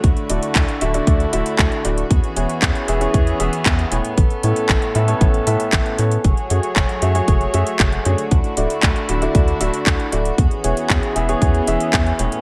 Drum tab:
HH |xxxxxxxxxxxxxxxx|xxxxxxxxxxxxxxxx|xxxxxxxxxxxxxxxx|xxxxxxxxxxxxxxxx|
CP |----x-------x---|----x-------x---|----x-------x---|----x-------x---|
BD |o---o---o---o---|o---o---o---o---|o---o---o---o---|o---o---o---o---|

HH |xxxxxxxxxxxxxxxx|xxxxxxxxxxxxxxxx|
CP |----x-------x---|----x-------x---|
BD |o---o---o---o---|o---o---o---o---|